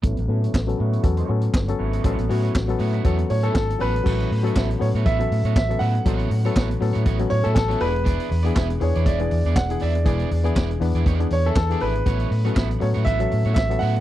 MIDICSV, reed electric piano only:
0, 0, Header, 1, 2, 480
1, 0, Start_track
1, 0, Key_signature, 3, "major"
1, 0, Tempo, 501253
1, 35, Time_signature, 4, 2, 24, 8
1, 13409, End_track
2, 0, Start_track
2, 0, Title_t, "Reed electric piano"
2, 0, Program_c, 0, 4
2, 28, Note_on_c, 0, 54, 69
2, 32, Note_on_c, 0, 59, 69
2, 36, Note_on_c, 0, 61, 67
2, 40, Note_on_c, 0, 69, 82
2, 221, Control_c, 0, 64, 127
2, 245, Note_off_c, 0, 54, 0
2, 247, Note_off_c, 0, 59, 0
2, 249, Note_off_c, 0, 61, 0
2, 251, Note_off_c, 0, 69, 0
2, 272, Note_on_c, 0, 54, 71
2, 280, Note_on_c, 0, 59, 68
2, 284, Note_on_c, 0, 61, 75
2, 284, Note_on_c, 0, 69, 83
2, 598, Note_off_c, 0, 54, 0
2, 602, Note_off_c, 0, 59, 0
2, 604, Note_off_c, 0, 61, 0
2, 604, Note_off_c, 0, 69, 0
2, 642, Note_on_c, 0, 54, 79
2, 648, Note_on_c, 0, 59, 76
2, 652, Note_on_c, 0, 61, 74
2, 655, Note_on_c, 0, 69, 94
2, 953, Note_off_c, 0, 54, 0
2, 956, Note_off_c, 0, 59, 0
2, 958, Note_off_c, 0, 61, 0
2, 959, Note_off_c, 0, 69, 0
2, 987, Note_on_c, 0, 54, 78
2, 994, Note_on_c, 0, 59, 71
2, 998, Note_on_c, 0, 61, 72
2, 1003, Note_on_c, 0, 69, 91
2, 1206, Note_off_c, 0, 54, 0
2, 1210, Note_off_c, 0, 59, 0
2, 1212, Note_off_c, 0, 61, 0
2, 1214, Note_off_c, 0, 69, 0
2, 1233, Note_on_c, 0, 54, 67
2, 1237, Note_on_c, 0, 59, 57
2, 1246, Note_on_c, 0, 61, 70
2, 1251, Note_on_c, 0, 69, 78
2, 1560, Note_off_c, 0, 54, 0
2, 1561, Note_off_c, 0, 59, 0
2, 1566, Note_off_c, 0, 61, 0
2, 1568, Note_off_c, 0, 69, 0
2, 1609, Note_on_c, 0, 54, 73
2, 1614, Note_on_c, 0, 59, 74
2, 1620, Note_on_c, 0, 61, 74
2, 1624, Note_on_c, 0, 69, 96
2, 1917, Note_off_c, 0, 54, 0
2, 1919, Note_off_c, 0, 59, 0
2, 1922, Note_off_c, 0, 61, 0
2, 1924, Note_off_c, 0, 69, 0
2, 1958, Note_on_c, 0, 54, 74
2, 1962, Note_on_c, 0, 59, 64
2, 1965, Note_on_c, 0, 61, 69
2, 1972, Note_on_c, 0, 69, 85
2, 2173, Note_off_c, 0, 54, 0
2, 2175, Note_off_c, 0, 59, 0
2, 2176, Note_off_c, 0, 61, 0
2, 2179, Note_off_c, 0, 69, 0
2, 2198, Note_on_c, 0, 54, 75
2, 2202, Note_on_c, 0, 59, 69
2, 2207, Note_on_c, 0, 61, 73
2, 2214, Note_on_c, 0, 66, 90
2, 2523, Note_off_c, 0, 54, 0
2, 2524, Note_off_c, 0, 59, 0
2, 2527, Note_off_c, 0, 61, 0
2, 2530, Note_off_c, 0, 66, 0
2, 2567, Note_on_c, 0, 54, 85
2, 2575, Note_on_c, 0, 59, 85
2, 2583, Note_on_c, 0, 61, 78
2, 2583, Note_on_c, 0, 69, 96
2, 2877, Note_off_c, 0, 54, 0
2, 2881, Note_off_c, 0, 59, 0
2, 2885, Note_off_c, 0, 61, 0
2, 2885, Note_off_c, 0, 69, 0
2, 2917, Note_on_c, 0, 54, 82
2, 2922, Note_on_c, 0, 59, 79
2, 2924, Note_on_c, 0, 61, 77
2, 2930, Note_on_c, 0, 69, 90
2, 3132, Note_off_c, 0, 54, 0
2, 3135, Note_off_c, 0, 59, 0
2, 3136, Note_off_c, 0, 61, 0
2, 3139, Note_off_c, 0, 69, 0
2, 3166, Note_on_c, 0, 73, 62
2, 3170, Note_on_c, 0, 64, 51
2, 3392, Note_off_c, 0, 73, 0
2, 3394, Note_off_c, 0, 64, 0
2, 3407, Note_on_c, 0, 69, 63
2, 3412, Note_on_c, 0, 61, 50
2, 3629, Note_off_c, 0, 61, 0
2, 3630, Note_on_c, 0, 54, 80
2, 3635, Note_off_c, 0, 69, 0
2, 3635, Note_on_c, 0, 59, 66
2, 3641, Note_on_c, 0, 61, 78
2, 3647, Note_on_c, 0, 69, 91
2, 3654, Control_c, 0, 64, 0
2, 3749, Control_c, 0, 64, 127
2, 3849, Note_off_c, 0, 54, 0
2, 3851, Note_off_c, 0, 59, 0
2, 3854, Note_off_c, 0, 61, 0
2, 3857, Note_off_c, 0, 69, 0
2, 3867, Note_on_c, 0, 54, 69
2, 3874, Note_on_c, 0, 59, 60
2, 3875, Note_on_c, 0, 61, 66
2, 3883, Note_on_c, 0, 69, 75
2, 3894, Control_c, 0, 64, 0
2, 4067, Control_c, 0, 64, 127
2, 4197, Note_off_c, 0, 54, 0
2, 4200, Note_off_c, 0, 59, 0
2, 4201, Note_off_c, 0, 61, 0
2, 4205, Note_off_c, 0, 69, 0
2, 4241, Note_on_c, 0, 54, 80
2, 4247, Note_on_c, 0, 59, 78
2, 4254, Note_on_c, 0, 61, 72
2, 4256, Note_on_c, 0, 69, 97
2, 4553, Note_off_c, 0, 54, 0
2, 4557, Note_off_c, 0, 59, 0
2, 4560, Note_off_c, 0, 61, 0
2, 4561, Note_off_c, 0, 69, 0
2, 4589, Note_on_c, 0, 54, 66
2, 4593, Note_on_c, 0, 59, 67
2, 4598, Note_on_c, 0, 61, 67
2, 4599, Note_on_c, 0, 69, 69
2, 4918, Note_off_c, 0, 54, 0
2, 4920, Note_off_c, 0, 59, 0
2, 4922, Note_off_c, 0, 61, 0
2, 4923, Note_off_c, 0, 69, 0
2, 4972, Note_on_c, 0, 54, 71
2, 4976, Note_on_c, 0, 59, 66
2, 4985, Note_on_c, 0, 61, 64
2, 4987, Note_on_c, 0, 69, 83
2, 5385, Note_off_c, 0, 54, 0
2, 5387, Note_off_c, 0, 59, 0
2, 5391, Note_off_c, 0, 61, 0
2, 5392, Note_off_c, 0, 69, 0
2, 5451, Note_on_c, 0, 54, 68
2, 5458, Note_on_c, 0, 59, 66
2, 5459, Note_on_c, 0, 61, 65
2, 5466, Note_on_c, 0, 69, 80
2, 5758, Note_off_c, 0, 54, 0
2, 5761, Note_off_c, 0, 59, 0
2, 5762, Note_off_c, 0, 61, 0
2, 5766, Note_off_c, 0, 69, 0
2, 5797, Note_on_c, 0, 59, 65
2, 5799, Note_on_c, 0, 54, 69
2, 5806, Note_on_c, 0, 61, 63
2, 5812, Note_on_c, 0, 69, 81
2, 6121, Note_off_c, 0, 59, 0
2, 6122, Note_off_c, 0, 54, 0
2, 6125, Note_off_c, 0, 61, 0
2, 6129, Note_off_c, 0, 69, 0
2, 6177, Note_on_c, 0, 54, 75
2, 6179, Note_on_c, 0, 59, 72
2, 6186, Note_on_c, 0, 61, 72
2, 6190, Note_on_c, 0, 69, 99
2, 6480, Note_off_c, 0, 54, 0
2, 6481, Note_off_c, 0, 59, 0
2, 6485, Note_off_c, 0, 61, 0
2, 6487, Note_off_c, 0, 69, 0
2, 6521, Note_on_c, 0, 54, 80
2, 6526, Note_on_c, 0, 59, 78
2, 6529, Note_on_c, 0, 61, 75
2, 6532, Note_on_c, 0, 69, 90
2, 6843, Note_off_c, 0, 54, 0
2, 6845, Note_off_c, 0, 59, 0
2, 6847, Note_off_c, 0, 61, 0
2, 6848, Note_off_c, 0, 69, 0
2, 6891, Note_on_c, 0, 54, 78
2, 6894, Note_on_c, 0, 59, 68
2, 6903, Note_on_c, 0, 61, 68
2, 6905, Note_on_c, 0, 69, 82
2, 7303, Note_off_c, 0, 54, 0
2, 7304, Note_off_c, 0, 59, 0
2, 7309, Note_off_c, 0, 61, 0
2, 7310, Note_off_c, 0, 69, 0
2, 7363, Note_on_c, 0, 54, 69
2, 7371, Note_on_c, 0, 59, 66
2, 7372, Note_on_c, 0, 61, 71
2, 7381, Note_on_c, 0, 69, 81
2, 7466, Note_off_c, 0, 59, 0
2, 7471, Note_on_c, 0, 52, 69
2, 7474, Note_off_c, 0, 54, 0
2, 7477, Note_on_c, 0, 59, 63
2, 7478, Note_off_c, 0, 61, 0
2, 7482, Note_off_c, 0, 69, 0
2, 7484, Note_on_c, 0, 62, 68
2, 7488, Note_on_c, 0, 66, 71
2, 7490, Control_c, 0, 64, 0
2, 7544, Note_on_c, 0, 68, 83
2, 7548, Note_off_c, 0, 66, 0
2, 7671, Control_c, 0, 64, 127
2, 8003, Note_off_c, 0, 52, 0
2, 8006, Note_off_c, 0, 59, 0
2, 8009, Note_off_c, 0, 62, 0
2, 8039, Note_off_c, 0, 68, 0
2, 8088, Note_on_c, 0, 52, 82
2, 8092, Note_on_c, 0, 59, 77
2, 8097, Note_on_c, 0, 62, 72
2, 8103, Note_on_c, 0, 68, 93
2, 8395, Note_off_c, 0, 52, 0
2, 8397, Note_off_c, 0, 59, 0
2, 8399, Note_off_c, 0, 62, 0
2, 8402, Note_off_c, 0, 68, 0
2, 8435, Note_on_c, 0, 52, 76
2, 8436, Note_on_c, 0, 59, 60
2, 8446, Note_on_c, 0, 62, 70
2, 8446, Note_on_c, 0, 68, 79
2, 8759, Note_off_c, 0, 52, 0
2, 8759, Note_off_c, 0, 59, 0
2, 8764, Note_off_c, 0, 62, 0
2, 8764, Note_off_c, 0, 68, 0
2, 8806, Note_on_c, 0, 52, 75
2, 8810, Note_on_c, 0, 59, 67
2, 8811, Note_on_c, 0, 62, 70
2, 8820, Note_on_c, 0, 68, 76
2, 9220, Note_off_c, 0, 52, 0
2, 9221, Note_off_c, 0, 59, 0
2, 9222, Note_off_c, 0, 62, 0
2, 9227, Note_off_c, 0, 68, 0
2, 9282, Note_on_c, 0, 52, 76
2, 9291, Note_on_c, 0, 59, 66
2, 9293, Note_on_c, 0, 62, 64
2, 9298, Note_on_c, 0, 68, 84
2, 9591, Note_off_c, 0, 52, 0
2, 9596, Note_off_c, 0, 59, 0
2, 9597, Note_off_c, 0, 62, 0
2, 9599, Note_off_c, 0, 68, 0
2, 9617, Note_on_c, 0, 52, 71
2, 9625, Note_on_c, 0, 62, 61
2, 9627, Note_on_c, 0, 59, 60
2, 9633, Note_on_c, 0, 68, 84
2, 9949, Note_off_c, 0, 52, 0
2, 9953, Note_off_c, 0, 62, 0
2, 9954, Note_off_c, 0, 59, 0
2, 9957, Note_off_c, 0, 68, 0
2, 9996, Note_on_c, 0, 52, 75
2, 9999, Note_on_c, 0, 59, 74
2, 10004, Note_on_c, 0, 62, 72
2, 10011, Note_on_c, 0, 68, 89
2, 10308, Note_off_c, 0, 52, 0
2, 10310, Note_off_c, 0, 59, 0
2, 10312, Note_off_c, 0, 62, 0
2, 10315, Note_off_c, 0, 68, 0
2, 10344, Note_on_c, 0, 52, 77
2, 10351, Note_on_c, 0, 59, 84
2, 10355, Note_on_c, 0, 62, 83
2, 10359, Note_on_c, 0, 71, 90
2, 10672, Note_off_c, 0, 52, 0
2, 10676, Note_off_c, 0, 59, 0
2, 10678, Note_off_c, 0, 62, 0
2, 10680, Note_off_c, 0, 71, 0
2, 10715, Note_on_c, 0, 52, 69
2, 10725, Note_on_c, 0, 59, 60
2, 10725, Note_on_c, 0, 62, 71
2, 10732, Note_on_c, 0, 68, 75
2, 11133, Note_off_c, 0, 52, 0
2, 11138, Note_off_c, 0, 59, 0
2, 11138, Note_off_c, 0, 62, 0
2, 11142, Note_off_c, 0, 68, 0
2, 11205, Note_on_c, 0, 52, 74
2, 11209, Note_on_c, 0, 59, 65
2, 11217, Note_on_c, 0, 62, 59
2, 11218, Note_on_c, 0, 68, 77
2, 11512, Note_off_c, 0, 52, 0
2, 11514, Note_off_c, 0, 59, 0
2, 11518, Note_off_c, 0, 62, 0
2, 11518, Note_off_c, 0, 68, 0
2, 11544, Note_on_c, 0, 54, 65
2, 11551, Note_on_c, 0, 59, 62
2, 11554, Note_on_c, 0, 61, 61
2, 11564, Control_c, 0, 64, 0
2, 11564, Note_on_c, 0, 69, 67
2, 11720, Control_c, 0, 64, 127
2, 11872, Note_off_c, 0, 54, 0
2, 11875, Note_off_c, 0, 59, 0
2, 11876, Note_off_c, 0, 61, 0
2, 11881, Note_off_c, 0, 69, 0
2, 11922, Note_on_c, 0, 54, 77
2, 11927, Note_on_c, 0, 59, 78
2, 11932, Note_on_c, 0, 61, 81
2, 11939, Note_on_c, 0, 69, 81
2, 12230, Note_off_c, 0, 54, 0
2, 12232, Note_off_c, 0, 59, 0
2, 12235, Note_off_c, 0, 61, 0
2, 12238, Note_off_c, 0, 69, 0
2, 12265, Note_on_c, 0, 54, 75
2, 12270, Note_on_c, 0, 61, 66
2, 12272, Note_on_c, 0, 59, 64
2, 12278, Note_on_c, 0, 69, 74
2, 12591, Note_off_c, 0, 54, 0
2, 12594, Note_off_c, 0, 61, 0
2, 12595, Note_off_c, 0, 59, 0
2, 12598, Note_off_c, 0, 69, 0
2, 12639, Note_on_c, 0, 54, 76
2, 12641, Note_on_c, 0, 59, 67
2, 12647, Note_on_c, 0, 61, 60
2, 12653, Note_on_c, 0, 69, 81
2, 13054, Note_off_c, 0, 54, 0
2, 13055, Note_off_c, 0, 59, 0
2, 13058, Note_off_c, 0, 61, 0
2, 13061, Note_off_c, 0, 69, 0
2, 13119, Note_on_c, 0, 54, 74
2, 13121, Note_on_c, 0, 59, 71
2, 13129, Note_on_c, 0, 61, 64
2, 13130, Note_on_c, 0, 69, 79
2, 13409, Note_off_c, 0, 54, 0
2, 13409, Note_off_c, 0, 59, 0
2, 13409, Note_off_c, 0, 61, 0
2, 13409, Note_off_c, 0, 69, 0
2, 13409, End_track
0, 0, End_of_file